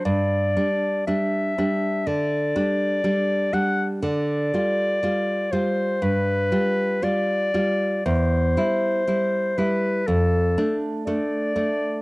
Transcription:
<<
  \new Staff \with { instrumentName = "Clarinet" } { \time 4/4 \key c \lydian \tempo 4 = 60 d''4 e''4 d''4. fis''8 | \key g \mixolydian d''4. c''8 b'4 d''4 | c''4. b'8 a'8. r16 d''4 | }
  \new Staff \with { instrumentName = "Nylon-string guitar" } { \clef bass \time 4/4 \key c \lydian g,8 <g d'>8 <g d'>8 <g d'>8 d8 <g d'>8 <g d'>8 <g d'>8 | \key g \mixolydian d8 <g f'>8 <g f'>8 <g f'>8 g,8 <g f'>8 <g f'>8 <g f'>8 | e,8 <g e'>8 <g e'>8 <g e'>8 f,8 <a d'>8 <a d'>8 <a d'>8 | }
>>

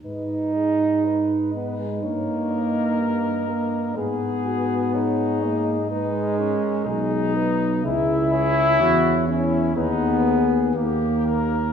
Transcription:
<<
  \new Staff \with { instrumentName = "Flugelhorn" } { \time 4/4 \key gis \minor \tempo 4 = 62 dis''4 b'4 cis''8 dis''8 dis''4 | b'4 cis''8 dis''2 r8 | e''8 cis''8 cis''4 b'8 gis'8 ais'4 | }
  \new Staff \with { instrumentName = "French horn" } { \time 4/4 \key gis \minor b'8 gis'8 dis'2 g'8 ais'8 | gis'8 fis'8 gis'4 b'8 ais'8 gis'8 b'8 | gis'8 r8 fis'8 e'8 gis'4 g'4 | }
  \new Staff \with { instrumentName = "Trumpet" } { \time 4/4 \key gis \minor r2 ais'2 | gis'4 dis'4 dis'8 cis'8 dis'4 | e'8 gis'8 fis'8 e'8 dis'8 r8 g'8 ais'8 | }
  \new Staff \with { instrumentName = "Trombone" } { \time 4/4 \key gis \minor dis'4. b16 gis16 ais4. ais8 | b4. ais8 gis4.~ gis16 r16 | e'4. cis'8 b4 ais4 | }
  \new Staff \with { instrumentName = "Tuba" } { \clef bass \time 4/4 \key gis \minor gis,2 g,2 | gis,2~ gis,8 r8 b,,4 | cis,4 e,4 dis,4 dis,4 | }
>>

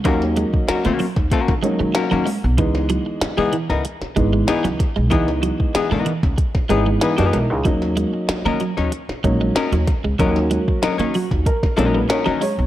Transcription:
<<
  \new Staff \with { instrumentName = "Hollow-body jazz guitar" } { \time 4/4 \key dis \phrygian \tempo 4 = 95 <ais cis' fis' ais'>16 r8. <ais cis' fis' ais'>16 <ais cis' fis' cis''>16 r8 <ais cis' fis' ais'>16 r8. <ais cis' fis' ais'>16 <ais cis' fis' ais'>16 r8 | r4 r16 <e b dis' gis'>16 r16 <e b dis' ais'>16 r4 <e b dis' gis'>16 r8. | <e b dis' gis'>16 r8. <e b dis' gis'>16 <e b dis' ais'>16 r4 <e b dis' gis'>16 r16 <e b dis' gis'>16 <e b dis' gis'>16 r8 | r4 r16 <fis cis' dis' ais'>16 r16 <fis cis' dis' cis''>16 r4 <fis cis' dis' ais'>16 r8. |
<fis cis' dis' ais'>16 r8. <fis cis' dis' ais'>16 <fis cis' dis' cis''>16 r4 <fis cis' dis' ais'>16 r16 <fis cis' dis' ais'>16 <fis cis' dis' ais'>16 r8 | }
  \new Staff \with { instrumentName = "Upright piano" } { \time 4/4 \key dis \phrygian r1 | r1 | r2 r8 gis'8 <dis' gis' b'>16 <fis' b' dis''>16 <e' ais'>16 <dis' gis'>16~ | <dis' gis'>16 r2. r8. |
r4. fis'8 ais'8 ais'16 b'16 cis''8 cis''8 | }
  \new Staff \with { instrumentName = "Upright piano" } { \time 4/4 \key dis \phrygian <fis ais cis' dis'>4~ <fis ais cis' dis'>16 r4 r16 <fis ais cis' dis'>4 r8 | <e gis b dis'>4~ <e gis b dis'>16 r4 r16 <e gis b dis'>4 r8 | <e gis b dis'>4~ <e gis b dis'>16 r4 r16 <e gis b cis' dis'>4 r8 | <fis ais cis' dis'>4~ <fis ais cis' dis'>16 r4 r16 <fis ais cis' dis'>4 r8 |
<fis ais cis' fis'>4~ <fis ais cis' fis'>16 r4 r16 <fis ais cis' dis'>4 r8 | }
  \new Staff \with { instrumentName = "Clean electric guitar" } { \clef bass \time 4/4 \key dis \phrygian fis16 r16 gis16 r8 ais16 fis16 r8. gis16 gis16 r16 fis16 gis16 r16 | e16 r16 fis16 r8 gis16 e16 r8. gis16 gis16 r16 fis16 r16 gis16 | e16 r16 fis16 r8 gis16 e16 r8. gis16 gis16 r16 fis16 gis16 r16 | fis16 r16 gis16 r8 ais16 fis16 r8. gis16 gis16 r16 fis16 r16 gis16 |
fis16 r16 gis16 r8 ais16 fis16 r8. gis16 gis16 r16 fis16 gis16 r16 | }
  \new Staff \with { instrumentName = "Upright bass" } { \clef bass \time 4/4 \key dis \phrygian dis,8. r8 dis16 r16 dis,16 r16 dis16 r16 dis16 r16 dis16 r16 b,,16 | cis,8. r8 cis16 r16 cis,16 r8 gis,,8 r16 cis,16 r16 b,,16 | cis,8. r8 cis16 r16 cis,16 r8 gis,,8 r16 fis,16 b,,16 cis,16 | dis,8. r8 dis16 r16 dis,16 r8 ais,,8 r16 dis,16 r16 cis,16 |
dis,8. r8 dis16 r16 dis,16 r8 ais,,8 r16 dis16 r16 b,,16 | }
  \new DrumStaff \with { instrumentName = "Drums" } \drummode { \time 4/4 <hh bd>16 sn16 hh16 bd16 <hh sn>16 hh16 hho16 <bd sn>16 <hh bd>16 <bd sn>16 hh8 <hh sn>8 <hho sn>8 | <hh bd>16 sn16 hh8 <hh sn>8 hh16 sn16 hh16 sn16 <hh bd>8 <hh sn>16 hh16 <hh bd sn>8 | <hh bd>16 sn16 hh16 bd16 <hh sn>8 hh16 <bd sn>16 <hh bd>16 <bd sn>16 hh8 <hh sn>16 hh16 <hh sn>8 | <hh bd>16 sn16 hh8 <hh sn>8 hh16 sn16 hh16 sn16 <hh bd>8 <hh sn>16 hh16 <hh bd sn>8 |
<hh bd>16 sn16 hh16 bd16 <hh sn>16 hh16 hho16 <bd sn>16 <hh bd>16 <bd sn>16 hh8 <hh sn>8 <hho sn>8 | }
>>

